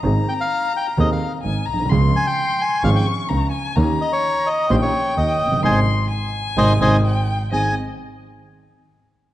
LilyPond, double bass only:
\new Staff \with { instrumentName = "Double bass" } { \clef bass \time 4/4 \key aes \major \tempo 4 = 129 aes,,8 r4. ees,8 r8 aes,,8 ces,8 | des,8 r4. aes,,8 r8 des,8 r8 | ees,8 r4. bes,,8 r8 ees,8 ges,,8 | aes,,8 r4. aes,,8 aes,,8 r4 |
aes,,8 r2. r8 | }